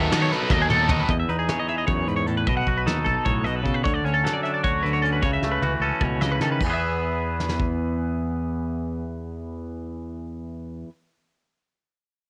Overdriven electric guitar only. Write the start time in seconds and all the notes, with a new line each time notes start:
Already playing: D#3 B3 D#4 A4
0.11 F#3 B3 D#4 A4
0.70 B3 D#4 A4
0.88 D#3 F#3 B3 D#4 A4